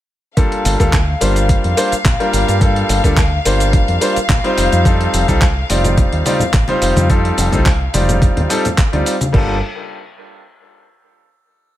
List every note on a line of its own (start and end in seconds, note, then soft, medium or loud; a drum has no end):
0.37 0.76 G3 medium
0.37 0.76 A#3 medium
0.37 0.76 D4 medium
0.37 0.76 F4 medium
0.37 0.77 A4 medium
0.37 9.35 F5 medium
0.37 kick loud
0.37 closed hi-hat medium
0.37 shaker soft
0.52 closed hi-hat soft
0.65 0.75 G1 loud
0.65 open hi-hat loud
0.65 shaker medium
0.80 1.14 D2 medium
0.80 0.92 G3 medium
0.80 0.92 A#3 medium
0.80 0.92 D4 medium
0.80 0.93 F4 medium
0.80 0.93 A4 loud
0.80 kick medium
0.80 closed hi-hat medium
0.80 shaker soft
0.93 kick loud
0.93 clap loud
0.93 closed hi-hat medium
0.93 shaker soft
1.21 1.56 G1 medium
1.21 1.74 G3 medium
1.21 1.74 A#3 medium
1.21 1.74 D4 medium
1.21 1.74 F4 medium
1.21 1.74 C5 medium
1.21 open hi-hat loud
1.21 shaker medium
1.36 closed hi-hat medium
1.36 shaker soft
1.49 kick loud
1.49 closed hi-hat medium
1.49 shaker soft
1.64 1.73 F2 medium
1.64 closed hi-hat soft
1.77 1.91 G3 medium
1.77 1.91 A#3 medium
1.77 1.91 D4 medium
1.77 1.91 F4 medium
1.77 1.92 C5 loud
1.77 open hi-hat loud
1.77 shaker medium
1.92 muted fingered electric bass stroke soft
1.92 closed hi-hat medium
1.92 shaker soft
2.05 2.15 A#1 loud
2.05 kick loud
2.05 clap loud
2.05 closed hi-hat medium
2.05 shaker soft
2.20 2.58 G3 loud
2.20 2.58 A#3 medium
2.20 2.58 D4 medium
2.20 2.58 F4 medium
2.20 2.58 A#4 loud
2.20 closed hi-hat soft
2.33 2.43 G1 medium
2.33 open hi-hat loud
2.33 shaker medium
2.48 2.82 G2 loud
2.48 closed hi-hat medium
2.48 shaker soft
2.61 3.00 G3 medium
2.61 3.01 A#3 medium
2.61 3.01 D4 medium
2.61 3.01 F4 medium
2.61 3.01 A4 medium
2.61 kick loud
2.61 closed hi-hat medium
2.61 shaker soft
2.76 closed hi-hat soft
2.89 2.99 G1 loud
2.89 open hi-hat loud
2.89 shaker medium
3.04 3.38 D2 medium
3.04 3.17 G3 medium
3.04 3.17 A#3 medium
3.04 3.17 D4 medium
3.04 3.17 F4 medium
3.04 3.17 A4 loud
3.04 kick medium
3.04 closed hi-hat medium
3.04 shaker soft
3.17 kick loud
3.17 clap loud
3.17 open hi-hat medium
3.17 shaker soft
3.45 3.80 G1 medium
3.45 3.98 G3 medium
3.45 3.98 A#3 medium
3.45 3.98 D4 medium
3.45 3.98 F4 medium
3.45 3.99 C5 medium
3.45 open hi-hat loud
3.45 shaker medium
3.60 closed hi-hat medium
3.60 shaker soft
3.73 kick loud
3.73 closed hi-hat medium
3.73 shaker soft
3.88 3.97 F2 medium
3.88 closed hi-hat soft
4.01 4.15 G3 loud
4.01 4.15 A#3 medium
4.01 4.16 D4 medium
4.01 4.16 F4 medium
4.01 4.16 C5 loud
4.01 open hi-hat loud
4.01 shaker medium
4.16 muted fingered electric bass stroke soft
4.16 closed hi-hat medium
4.16 shaker soft
4.29 4.39 A#1 loud
4.29 kick loud
4.29 clap loud
4.29 closed hi-hat medium
4.29 shaker soft
4.44 4.82 G3 loud
4.44 4.82 C4 medium
4.44 4.82 D#4 loud
4.44 4.83 F4 medium
4.44 4.83 C5 loud
4.44 closed hi-hat soft
4.58 4.67 F1 medium
4.58 open hi-hat loud
4.58 shaker medium
4.72 5.06 F2 loud
4.72 closed hi-hat medium
4.72 shaker soft
4.85 5.25 G3 medium
4.85 5.25 C4 medium
4.85 5.25 D#4 medium
4.85 5.25 F4 medium
4.85 5.25 A4 medium
4.85 kick loud
4.85 closed hi-hat medium
4.85 shaker soft
5.01 closed hi-hat soft
5.14 5.23 F1 loud
5.14 open hi-hat loud
5.14 shaker medium
5.28 5.62 C2 medium
5.28 5.41 G3 medium
5.28 5.41 C4 medium
5.28 5.41 D#4 medium
5.28 5.41 F4 medium
5.28 5.41 A4 loud
5.28 kick medium
5.28 closed hi-hat medium
5.28 shaker soft
5.41 kick loud
5.41 clap loud
5.41 closed hi-hat medium
5.41 shaker soft
5.69 6.04 F1 loud
5.69 6.22 G3 medium
5.69 6.23 C4 medium
5.69 6.23 D#4 medium
5.69 6.23 F4 medium
5.69 6.23 D5 medium
5.69 open hi-hat loud
5.69 shaker medium
5.84 closed hi-hat medium
5.84 low conga medium
5.84 shaker soft
5.98 kick loud
5.98 closed hi-hat medium
5.98 shaker soft
6.12 6.21 D#2 medium
6.12 closed hi-hat soft
6.25 6.40 G3 medium
6.25 6.40 C4 medium
6.25 6.40 D#4 medium
6.25 6.40 F4 medium
6.25 6.40 D5 loud
6.25 open hi-hat loud
6.25 high conga medium
6.25 shaker medium
6.39 muted fingered electric bass stroke soft
6.39 closed hi-hat medium
6.39 low conga loud
6.39 shaker soft
6.54 6.63 A1 loud
6.54 kick loud
6.54 clap loud
6.54 closed hi-hat medium
6.54 shaker soft
6.68 7.06 G3 loud
6.68 7.06 C4 medium
6.68 7.07 D#4 medium
6.68 7.07 F4 medium
6.68 7.07 C5 loud
6.68 closed hi-hat soft
6.68 muted conga medium
6.82 6.91 F1 medium
6.82 open hi-hat loud
6.82 shaker medium
6.96 7.30 F2 loud
6.96 closed hi-hat medium
6.96 muted conga medium
6.96 high conga loud
6.96 shaker soft
7.09 7.49 G3 medium
7.09 7.49 C4 medium
7.09 7.49 D#4 medium
7.09 7.49 F4 medium
7.09 7.49 A4 loud
7.09 kick loud
7.09 closed hi-hat medium
7.09 shaker soft
7.25 closed hi-hat soft
7.38 7.47 F1 loud
7.38 open hi-hat loud
7.38 shaker medium
7.52 7.86 C2 medium
7.52 7.65 G3 medium
7.52 7.65 C4 medium
7.52 7.65 D#4 medium
7.52 7.65 F4 medium
7.52 7.66 A4 loud
7.52 kick medium
7.52 closed hi-hat medium
7.52 high conga loud
7.52 shaker soft
7.66 kick loud
7.66 clap loud
7.66 open hi-hat medium
7.66 shaker soft
7.94 8.28 F1 loud
7.94 8.47 G3 medium
7.94 8.47 C4 medium
7.94 8.47 D#4 medium
7.94 8.47 F4 medium
7.94 8.47 D5 medium
7.94 open hi-hat loud
7.94 high conga medium
7.94 shaker medium
8.09 closed hi-hat medium
8.09 low conga medium
8.09 shaker soft
8.22 kick loud
8.22 closed hi-hat medium
8.22 shaker soft
8.37 8.46 D#2 medium
8.37 closed hi-hat soft
8.37 low conga medium
8.49 8.64 G3 medium
8.49 8.64 C4 medium
8.49 8.64 D#4 medium
8.49 8.64 F4 medium
8.49 8.64 A4 loud
8.49 open hi-hat loud
8.49 shaker medium
8.65 closed hi-hat medium
8.65 low conga medium
8.65 shaker soft
8.78 kick loud
8.78 clap loud
8.78 closed hi-hat medium
8.78 shaker soft
8.92 9.02 D2 medium
8.92 9.14 G3 medium
8.92 9.14 C4 medium
8.92 9.14 D#4 medium
8.92 9.14 F4 medium
8.92 9.14 D5 medium
8.92 closed hi-hat soft
9.06 open hi-hat loud
9.06 shaker medium
9.21 closed hi-hat medium
9.21 muted conga medium
9.21 high conga loud
9.21 shaker soft
9.32 9.60 G1 loud
9.32 9.54 G3 medium
9.32 9.55 A#3 medium
9.32 9.55 D4 medium
9.32 9.56 F4 medium
9.32 9.56 A4 medium
9.32 kick loud
9.32 crash medium